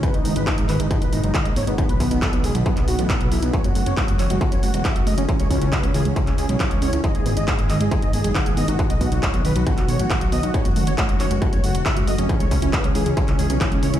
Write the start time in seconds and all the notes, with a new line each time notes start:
Already playing: G#3
0.03 B2 D#3 D#4 B4, kick, closed hi-hat
0.14 G#1 G#3 D#4, closed hi-hat
0.25 G#1 B3 D#4, open hi-hat
0.36 G#1 D#4 B4, closed hi-hat
0.47 B3 D#4, kick, clap, closed hi-hat
0.58 G#1 G#3 D#4, closed hi-hat
0.69 G#1 D#3 B4, clap, open hi-hat
0.80 G#1 G#3 D#4, closed hi-hat
0.91 D#4, kick, closed hi-hat
1.02 G#1 D#4 B4, closed hi-hat
1.13 G#1 B3 D#4, open hi-hat
1.23 F#1 G#3 D#4, closed hi-hat
1.34 D#3 D#5, kick, clap, closed hi-hat
1.45 G#1 G#3 D#4, closed hi-hat
1.56 G#1 B3 C#5, open hi-hat
1.67 G#1 B3 D#4, closed hi-hat
1.78 D#3 F#3 B3 F#4, kick, closed hi-hat
1.89 B1 F#3 B4, closed hi-hat
2.00 B1 B3, kick, open hi-hat
2.11 B1 B3 D#4, closed hi-hat
2.22 B3 A4, kick, clap, closed hi-hat
2.33 B1 F#3 B3, closed hi-hat
2.44 B1 D#3 G#4, open hi-hat
2.55 B1 F#3 B3, closed hi-hat
2.66 B3, kick, closed hi-hat
2.77 B1 B3 D#4, clap, closed hi-hat
2.88 B1 B3 F#4, open hi-hat
2.99 A1 F#3 B3, closed hi-hat
3.10 D#3 B3, kick, clap, closed hi-hat
3.21 B1 F#3 B3, closed hi-hat
3.31 B1 B3 E4, open hi-hat
3.42 B1 B3 D#4, closed hi-hat
3.53 C#3 F#3 G#3 A3 C#5, kick, closed hi-hat
3.64 F#1 G#3 F#4, closed hi-hat
3.75 F#1 A3 F#4, open hi-hat
3.86 F#1 C#4 C#5, closed hi-hat
3.97 A3 F#4, kick, clap, closed hi-hat
4.08 F#1 G#3 F#4, closed hi-hat
4.19 F#1 F#3 C#5, clap, open hi-hat
4.30 F#1 G#3 F#4, closed hi-hat
4.41 A3 F#4, kick, closed hi-hat
4.52 F#1 C#4 C#5, closed hi-hat
4.63 F#1 A3 F#4, open hi-hat
4.74 E1 G#3 F#4, closed hi-hat
4.85 E5, kick, clap, closed hi-hat
4.96 F#1 G#3 F#4, closed hi-hat
5.07 F#1 A3 D#5, open hi-hat
5.18 F#1 C#4, closed hi-hat
5.29 E3 C#4 E4, kick, closed hi-hat
5.40 C#2 G#3 C#5, closed hi-hat
5.51 C#2 C#4, kick, open hi-hat
5.61 C#2 C#4 E4, closed hi-hat
5.72 C#4 B4, kick, clap, closed hi-hat
5.83 C#2 G#3 C#4, closed hi-hat
5.94 C#2 E3 G#4, open hi-hat
6.05 C#2 G#3 C#4, closed hi-hat
6.16 C#4, kick, closed hi-hat
6.27 C#2 C#4 E4, clap, closed hi-hat
6.38 C#2 C#4 G#4, open hi-hat
6.49 B1 G#3 C#4, closed hi-hat
6.60 E3 C#4, kick, clap, closed hi-hat
6.71 C#2 G#3 C#4, closed hi-hat
6.82 C#2 C#4 C#5, open hi-hat
6.93 C#2 C#4 E4, closed hi-hat
7.04 B2 D#3 D#4 D#5, kick, closed hi-hat
7.15 G#1 G#3 G#4, closed hi-hat
7.26 G#1 B3 G#4, open hi-hat
7.37 G#1 D#4 D#5, closed hi-hat
7.48 B3 G#4, kick, clap, closed hi-hat
7.59 G#1 G#3 G#4, closed hi-hat
7.69 G#1 D#3 D#5, clap, open hi-hat
7.80 G#1 G#3 G#4, closed hi-hat
7.91 B3 G#4, kick, closed hi-hat
8.02 G#1 D#4 D#5, closed hi-hat
8.13 G#1 B3 G#4, open hi-hat
8.24 F#1 G#3 G#4, closed hi-hat
8.35 D#3 F#5, kick, clap, closed hi-hat
8.46 G#1 G#3 G#4, closed hi-hat
8.57 G#1 B3 D#5, open hi-hat
8.68 G#1 D#4 F#4, closed hi-hat
8.79 D#3 F#3 B3 F#4, kick, closed hi-hat
8.90 B1 F#3 D#5, closed hi-hat
9.01 B1 B3 F#4, kick, open hi-hat
9.12 B1 D#4 F#4, closed hi-hat
9.23 B3 C#5, kick, clap, closed hi-hat
9.34 B1 F#3 F#4, closed hi-hat
9.45 B1 D#3 B4, open hi-hat
9.56 B1 F#3 F#4, closed hi-hat
9.67 B3 F#4, kick, closed hi-hat
9.78 B1 D#4 F#4, clap, closed hi-hat
9.88 B1 B3 C#5, open hi-hat
9.99 A1 F#3 F#4, closed hi-hat
10.10 D#3 F#4, kick, clap, closed hi-hat
10.21 B1 F#3 F#4, closed hi-hat
10.32 B1 B3 D#5, open hi-hat
10.43 B1 D#4 F#4, closed hi-hat
10.54 C#3 F#3 G#3 A3 C#5, kick, closed hi-hat
10.65 F#1 G#3 F#4, closed hi-hat
10.76 F#1 A3 F#4, open hi-hat
10.87 F#1 C#4 C#5, closed hi-hat
10.98 A3 F#4, kick, clap, closed hi-hat
11.09 F#1 G#3 F#4, closed hi-hat
11.20 F#1 F#3 C#5, clap, open hi-hat
11.31 F#1 G#3 F#4, closed hi-hat
11.42 F#4, kick, closed hi-hat
11.53 F#1 C#4 C#5, closed hi-hat
11.64 F#1 A3 F#4, open hi-hat
11.75 E1 G#3 F#4, closed hi-hat
11.86 F#3 E5, kick, clap, closed hi-hat
11.96 F#1 G#3 F#4, closed hi-hat
12.07 F#1 A3 D#5, open hi-hat
12.18 F#1 C#4, closed hi-hat
12.29 C#3 E3 C#4 E4, kick, closed hi-hat
12.40 C#2 G#3 C#5, closed hi-hat
12.51 C#2 C#4, kick, open hi-hat
12.62 C#2 C#4 E4, closed hi-hat
12.73 C#4 B4, kick, clap, closed hi-hat
12.84 C#2 G#3 C#4, closed hi-hat
12.95 C#2 E3 G#4, open hi-hat
13.06 C#2 G#3 C#4, closed hi-hat
13.17 C#4, kick, closed hi-hat
13.28 C#2 C#4 E4, clap, closed hi-hat
13.39 C#2 C#4 G#4, open hi-hat
13.50 B1 G#3 C#4, closed hi-hat
13.61 E3 C#4, kick, clap, closed hi-hat
13.72 C#2 G#3 C#4, closed hi-hat
13.83 C#2 C#4 C#5, open hi-hat
13.94 C#2 C#4 E4, closed hi-hat